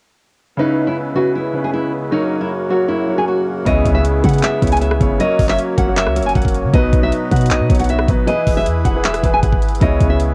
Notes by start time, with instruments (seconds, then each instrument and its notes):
0.57 harmonium C#2 C#3 B3 E4, grand piano C#3 C#4 E4 B4, nylon-string guitar D#4
0.87 nylon-string guitar E4
1.15 grand piano C#3 C#4 E4 B4, nylon-string guitar F#4
1.35 nylon-string guitar E4
1.53 grand piano C#3 C#4 E4 B4
1.64 nylon-string guitar G#4
1.74 nylon-string guitar E4
2.11 harmonium F#2 A#3 F#4, grand piano F#3 F#4 A#4 C#5, nylon-string guitar D#4
2.41 nylon-string guitar E4
2.69 grand piano F#3 F#4 A#4 C#5, nylon-string guitar F#4
2.88 nylon-string guitar E4
3.07 grand piano F#3 F#4 A#4 C#5
3.18 nylon-string guitar G#4
3.28 nylon-string guitar F#4
3.65 808-style bass C#2, grand piano C#3 B3 E4 C#5, harmonium C#3 G#3 B3 E4, nylon-string guitar D#5, kick, closed hi-hat
3.85 808-style bass C#2, kick, closed hi-hat
3.95 nylon-string guitar E5
4.05 closed hi-hat
4.24 808-style bass C#3, nylon-string guitar F#5, kick, closed hi-hat
4.29 closed hi-hat
4.33 closed hi-hat
4.38 closed hi-hat
4.43 nylon-string guitar E5, clap, closed hi-hat
4.61 808-style bass C#2, grand piano C#3 B3 E4 C#5, kick, closed hi-hat
4.67 closed hi-hat
4.72 nylon-string guitar G#5, closed hi-hat
4.77 closed hi-hat
4.81 nylon-string guitar E5, closed hi-hat
4.91 cross-stick
5.00 808-style bass F#1, grand piano C#3 B3 E4 C#5, kick, closed hi-hat
5.19 grand piano F#3 F#4 A#4 C#5, harmonium F#3 A#3 C#4, nylon-string guitar D#5, closed hi-hat
5.39 808-style bass F#1, kick, open hi-hat
5.49 nylon-string guitar E5, clap
5.59 closed hi-hat
5.77 808-style bass F#1, nylon-string guitar F#5, kick, closed hi-hat
5.86 grand piano F#3 F#4 A#4 C#5
5.96 nylon-string guitar E5, clap, closed hi-hat
6.06 808-style bass C#2, cross-stick
6.14 grand piano F#3 F#4 A#4 C#5, closed hi-hat
6.21 808-style bass F#1, closed hi-hat
6.26 nylon-string guitar G#5, closed hi-hat
6.35 808-style bass F#1, nylon-string guitar F#5, kick, closed hi-hat
6.42 kick, closed hi-hat
6.48 closed hi-hat
6.55 closed hi-hat
6.64 808-style bass C#3
6.73 808-style bass B1, grand piano B2 F#3 D#4 B4, harmonium B3 D#4, nylon-string guitar D#5, kick, closed hi-hat
6.93 808-style bass B1, kick, closed hi-hat
7.03 nylon-string guitar E5
7.12 closed hi-hat
7.31 808-style bass B2, nylon-string guitar F#5, kick, closed hi-hat
7.36 closed hi-hat
7.41 closed hi-hat
7.46 closed hi-hat
7.51 808-style bass A#1, nylon-string guitar D#5, clap, closed hi-hat
7.60 808-style bass B2
7.69 808-style bass B1, grand piano B2 F#3 D#4 C#5, kick, closed hi-hat
7.75 closed hi-hat
7.80 nylon-string guitar F#5, closed hi-hat
7.84 closed hi-hat
7.89 nylon-string guitar E5, closed hi-hat
7.99 cross-stick
8.07 808-style bass G#1, grand piano B2 F#3 D#4 B4, kick, closed hi-hat
8.26 grand piano E3 E4 G#4 B4, harmonium E3 E4 G#4 B4, nylon-string guitar D#5, closed hi-hat
8.47 808-style bass E1, kick, open hi-hat
8.57 nylon-string guitar E5
8.66 808-style bass E2, closed hi-hat
8.85 808-style bass E1, nylon-string guitar F#5, kick, closed hi-hat
8.94 grand piano E3 E4 G#4 B4
9.05 nylon-string guitar E5, clap, closed hi-hat
9.14 cross-stick, closed hi-hat
9.22 808-style bass E1, grand piano E3 E4 G#4 B4, kick, closed hi-hat
9.34 nylon-string guitar G#5
9.43 808-style bass G#1, nylon-string guitar F#5, kick, closed hi-hat
9.53 kick
9.62 closed hi-hat
9.69 closed hi-hat
9.75 closed hi-hat
9.80 808-style bass C#2, grand piano C#3 B3 E4 C#5, harmonium C#3 G#3 B3, nylon-string guitar D#5, kick, closed hi-hat
10.01 808-style bass C#2, kick, closed hi-hat
10.10 nylon-string guitar E5
10.20 closed hi-hat